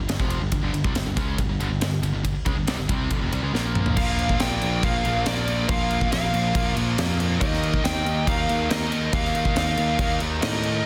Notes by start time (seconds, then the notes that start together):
0.08 G1 G2 D3, snare, ride
0.18 F1 F2 C3 F3, kick
0.30 ride
0.40 G1 G2 D3
0.51 G1 G2 D3, kick, ride
0.62 G1 G2 D3
0.73 G1 G2 D3, ride
0.84 C2 C3 G3, kick
0.94 G1 G2 D3, snare, ride
1.05 G1 G2 D3
1.16 C#2 C#3 G#3 C#4, kick, snare, ride
1.38 G1 G2 D3, kick, ride
1.49 G1 G2 D3
1.60 G1 G2 D3, ride
1.70 G1 G2 D3
1.81 G1 G2 D3, snare, ride
2.02 G1 G2 D3, ride
2.13 G1 G2 D3
2.24 G1 G2 D3, kick, ride
2.35 muted overdriven electric guitar stroke, muted distorted electric guitar stroke, muted picked electric bass stroke
2.46 C#2 C#3 G#3, kick, ride
2.56 G1 G2 D3
2.67 C2 C3 G3, snare, ride
2.78 G1 G2 D3
2.88 C2 C3 G3 C4, kick, ride
3.10 G1 G2 D3, kick, ride
3.21 F1 F2 C3
3.32 C2 C3 G3, ride
3.43 C#2 C#3 G#3
3.53 A#1 A#2 F3 A#3, snare
3.75 mid tom
3.86 floor tom
3.97 A#1 A#2 F3 A#3 A#4 F5, kick, crash
4.19 A#2 F3 A#3, crash
4.29 kick
4.40 A#1 A#2 F3 A#3 D5 G5, snare, crash
4.61 A#1 A#2 F3 A#3, crash
4.82 A#1 A#2 F3 A#3 A#4 F5, kick, crash
5.05 A#1 A#2 F3 A#3, crash
5.26 A#1 A#2 F3 A#3 A#4 D5, snare, crash
5.47 A#2 F3 A#3, crash
5.68 A#1 A#2 F3 A#3 A#4 F5, kick, crash
5.90 A#2 F3 A#3, crash
6.01 kick
6.12 A#1 A#2 F3 A#3 A#4 F5, snare, crash
6.33 A#1 A#2 F3 A#3, crash
6.54 A#1 A#2 F3 A#3, kick, crash
6.76 A#1 A#2 F3 A#3, crash
6.98 F2 A#2 F3 A#3, snare, crash
7.19 A#2 F3 A#3, crash
7.40 D#2 D#3 A#3 D#4 A#4 D#5, kick, crash
7.53 snare
7.62 D#3 A#3 D#4, crash
7.74 kick
7.84 D#2 D#3 A#3 D#4 D#5 G5, snare, crash
8.05 D#2 D#3 A#3 D#4, crash
8.26 D#2 D#3 A#3 D#4 A#4 F5, kick, crash
8.48 D#2 D#3 A#3 D#4, crash
8.69 D#2 D#3 A#3 D#4 A#4 D#5, snare, crash
8.91 D#3 A#3 D#4, crash
9.12 D#2 D#3 A#3 D#4 A#4 F5, kick, crash
9.25 snare
9.34 D#3 A#3 D#4, crash
9.45 kick
9.56 D#2 D#3 A#3 D#4 A#4 F5, snare, crash
9.77 D#2 D#3 A#3 D#4, crash
9.98 D#2 D#3 A#3 D#4, kick, crash
10.20 D#2 D#3 A#3 D#4, crash
10.40 A2 D#3 A#3 D#4 A#4 D#5, snare, crash
10.63 D#3 A#3 D#4, crash